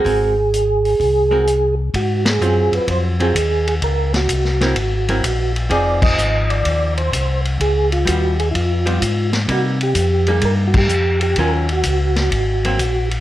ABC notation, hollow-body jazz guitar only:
X:1
M:4/4
L:1/8
Q:"Swing" 1/4=127
K:Abmix
V:1 name="Hollow-body jazz guitar"
[A,CGB] z4 [A,CGB] z2 | z2 [G,CF]3 [G,CF] z2 | z3 [G,C_FB] z [G,CFB] z2 | [F,CEA]4- [F,CEA] z3 |
z2 [=G,_CF] z2 [G,CF] z2 | [=G,B,E] z2 [G,B,E]3 z2 | [E,G,DF] z4 [G,B,C] z2 |]